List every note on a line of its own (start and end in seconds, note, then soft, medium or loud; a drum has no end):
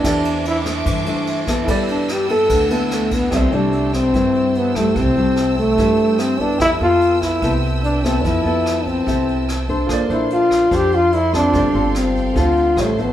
0.00 0.84 E3 medium
0.00 0.47 D4 loud
0.00 1.63 E4 medium
0.00 1.64 G4 medium
0.00 1.66 E5 medium
0.00 3.28 A5 medium
0.00 1.66 D6 medium
0.04 0.82 E2 loud
0.04 0.62 A3 medium
0.04 0.62 D4 medium
0.04 0.63 E4 medium
0.04 1.65 A4 medium
0.04 1.66 C5 medium
0.04 1.66 D5 medium
0.04 kick medium
0.04 cross-stick medium
0.04 ride medium
0.25 ride soft
0.45 0.59 E4 medium
0.45 ride soft
0.65 1.03 A3 medium
0.65 1.03 D4 medium
0.65 1.03 E4 medium
0.65 cross-stick medium
0.65 ride soft
0.86 1.64 G2 loud
0.86 1.66 E3 medium
0.86 kick medium
0.86 ride medium
1.06 1.44 A3 medium
1.06 1.45 D4 medium
1.06 1.45 E4 medium
1.06 ride soft
1.27 ride soft
1.47 2.26 B3 medium
1.47 2.27 E4 medium
1.47 2.27 A4 medium
1.47 kick medium
1.47 cross-stick medium
1.47 ride soft
1.64 2.46 G2 loud
1.64 3.27 E4 medium
1.64 3.28 A4 medium
1.64 kick medium
1.64 ride medium
1.69 2.48 G3 medium
1.69 3.29 B4 medium
1.69 3.31 B4 medium
1.69 3.30 D5 medium
1.69 3.30 G5 medium
1.69 3.30 E6 medium
1.88 2.14 D4 medium
1.88 ride soft
2.08 2.30 G4 medium
2.08 cross-stick medium
2.08 ride soft
2.29 2.67 B3 medium
2.29 2.67 E4 medium
2.29 2.68 A4 medium
2.29 ride soft
2.50 3.28 D2 loud
2.50 3.30 D3 medium
2.50 kick medium
2.50 ride medium
2.70 3.29 B3 medium
2.70 3.29 E4 medium
2.70 3.29 A4 medium
2.70 ride soft
2.91 3.15 A3 medium
2.91 cross-stick medium
2.91 ride soft
3.11 3.36 B3 medium
3.11 kick medium
3.11 ride soft
3.29 3.51 C2 loud
3.29 4.12 C3 medium
3.29 3.49 G3 medium
3.29 3.49 A3 medium
3.29 6.54 G4 medium
3.29 6.56 A4 soft
3.29 6.56 C5 medium
3.29 6.56 D5 soft
3.29 9.85 G5 medium
3.29 6.57 A5 medium
3.29 9.85 E6 medium
3.29 kick medium
3.29 cross-stick medium
3.29 closed hi-hat soft
3.33 3.55 C4 medium
3.33 3.50 E4 medium
3.33 6.57 E5 medium
3.52 4.10 C2 medium
3.52 4.11 G3 medium
3.52 4.11 A3 medium
3.52 3.94 D4 medium
3.52 4.11 E4 medium
3.52 closed hi-hat soft
3.73 closed hi-hat soft
3.93 4.58 C4 medium
3.93 kick soft
3.93 cross-stick medium
3.93 closed hi-hat soft
4.14 4.97 G2 medium
4.14 4.94 G2 medium
4.14 4.73 G3 medium
4.14 4.73 A3 medium
4.14 4.73 E4 medium
4.14 kick medium
4.14 closed hi-hat soft
4.35 closed hi-hat soft
4.55 4.78 B3 medium
4.55 closed hi-hat soft
4.75 5.13 G3 medium
4.75 5.01 A3 medium
4.75 5.14 A3 medium
4.75 5.14 E4 medium
4.75 kick soft
4.75 cross-stick medium
4.75 closed hi-hat soft
4.96 5.15 C2 loud
4.96 5.76 C3 medium
4.96 5.59 C4 loud
4.96 kick medium
4.96 closed hi-hat soft
5.16 5.75 G3 medium
5.16 5.76 A3 medium
5.16 5.76 E4 medium
5.16 closed hi-hat soft
5.36 cross-stick medium
5.36 closed hi-hat soft
5.57 6.22 A3 loud
5.57 kick soft
5.57 closed hi-hat soft
5.78 6.60 G2 medium
5.78 6.58 G2 medium
5.78 6.37 G3 medium
5.78 6.37 A3 medium
5.78 6.37 E4 medium
5.78 kick medium
5.78 closed hi-hat soft
5.99 closed hi-hat soft
6.19 6.42 C4 medium
6.19 cross-stick medium
6.19 closed hi-hat soft
6.39 6.78 B3 medium
6.39 6.61 D4 medium
6.39 6.78 E4 medium
6.39 6.78 A4 medium
6.39 kick soft
6.39 closed hi-hat soft
6.58 6.79 F2 loud
6.58 7.40 F3 medium
6.58 6.70 E4 loud
6.58 9.84 G4 medium
6.58 9.85 A4 medium
6.58 9.85 B4 medium
6.58 9.86 B4 medium
6.58 11.49 A5 medium
6.58 kick medium
6.58 cross-stick medium
6.58 closed hi-hat soft
6.64 9.87 E5 medium
6.80 7.38 F2 medium
6.80 7.39 B3 medium
6.80 7.24 F4 loud
6.80 7.40 A4 medium
6.80 closed hi-hat soft
7.01 closed hi-hat soft
7.22 7.57 E4 loud
7.22 kick soft
7.22 cross-stick medium
7.22 closed hi-hat soft
7.42 8.24 C2 medium
7.42 8.23 C3 medium
7.42 8.01 B3 medium
7.42 8.01 E4 medium
7.42 8.01 A4 medium
7.42 kick medium
7.42 closed hi-hat soft
7.63 closed hi-hat soft
7.84 8.06 D4 medium
7.84 closed hi-hat soft
8.04 8.42 B3 medium
8.04 8.27 C4 medium
8.04 8.42 E4 medium
8.04 8.43 A4 medium
8.04 kick soft
8.04 cross-stick medium
8.04 closed hi-hat soft
8.24 8.44 F2 loud
8.24 9.05 F3 medium
8.24 8.88 E4 loud
8.24 kick medium
8.24 closed hi-hat soft
8.45 9.02 F2 medium
8.45 9.04 B3 medium
8.45 9.04 E4 medium
8.45 9.04 A4 medium
8.45 closed hi-hat soft
8.66 cross-stick medium
8.66 closed hi-hat soft
8.86 9.69 C4 medium
8.86 kick soft
8.86 closed hi-hat soft
9.07 9.89 C2 medium
9.07 9.87 C3 medium
9.07 9.48 E4 medium
9.07 9.48 A4 medium
9.07 kick medium
9.07 closed hi-hat soft
9.28 closed hi-hat soft
9.49 cross-stick medium
9.49 closed hi-hat soft
9.69 10.06 D4 medium
9.69 10.07 A4 medium
9.69 10.07 C5 medium
9.69 kick soft
9.69 closed hi-hat soft
9.87 10.08 A#1 loud
9.87 10.70 A#3 medium
9.87 11.09 F4 medium
9.87 11.10 A4 medium
9.87 11.51 D5 medium
9.87 12.74 C6 medium
9.87 kick medium
9.87 cross-stick medium
9.87 closed hi-hat soft
9.91 11.11 C5 medium
9.91 11.12 D5 medium
10.09 10.67 A#1 medium
10.09 10.68 D4 medium
10.09 10.30 E4 medium
10.09 10.68 A4 medium
10.09 10.68 C5 medium
10.09 closed hi-hat soft
10.30 10.77 F4 medium
10.30 closed hi-hat soft
10.51 kick soft
10.51 cross-stick medium
10.51 closed hi-hat soft
10.71 11.55 F2 medium
10.71 11.52 F3 medium
10.71 11.12 D4 medium
10.71 11.12 A4 medium
10.71 11.13 C5 medium
10.71 kick medium
10.71 closed hi-hat soft
10.75 10.96 G4 loud
10.92 11.16 F4 loud
10.92 closed hi-hat soft
11.12 11.34 E4 loud
11.12 11.49 F4 soft
11.12 11.51 A4 soft
11.12 11.53 C5 soft
11.12 11.55 D5 soft
11.12 closed hi-hat soft
11.33 11.71 C4 medium
11.33 11.92 D4 loud
11.33 11.71 F4 medium
11.33 11.71 A4 medium
11.33 kick soft
11.33 cross-stick medium
11.33 closed hi-hat soft
11.50 11.73 G1 loud
11.50 12.33 G3 medium
11.50 12.73 F4 medium
11.50 12.74 A4 soft
11.50 13.13 A4 medium
11.50 12.76 F5 medium
11.50 13.13 G5 medium
11.50 kick medium
11.50 closed hi-hat soft
11.55 12.75 C5 medium
11.55 12.76 D5 medium
11.74 12.32 G1 medium
11.74 12.33 C4 medium
11.74 12.33 F4 medium
11.74 12.33 A4 medium
11.74 closed hi-hat soft
11.95 12.41 C4 medium
11.95 cross-stick medium
11.95 closed hi-hat soft
12.15 kick soft
12.15 closed hi-hat soft
12.35 12.74 D2 medium
12.35 12.74 D3 medium
12.35 12.75 C4 medium
12.35 12.75 F4 medium
12.35 12.76 A4 medium
12.35 kick medium
12.35 closed hi-hat soft
12.40 12.83 F4 loud
12.56 closed hi-hat soft
12.76 13.13 A1 loud
12.76 12.89 G3 medium
12.76 12.89 C#4 medium
12.76 12.89 F4 medium
12.76 13.13 G4 soft
12.76 13.13 C5 soft
12.76 13.13 C#5 medium
12.76 13.13 A5 medium
12.76 13.13 C6 medium
12.76 cross-stick medium
12.76 closed hi-hat soft
12.82 13.03 A3 medium
12.98 13.13 F3 medium
12.98 13.13 B3 medium
12.98 13.13 E4 medium
12.98 kick soft
12.98 closed hi-hat soft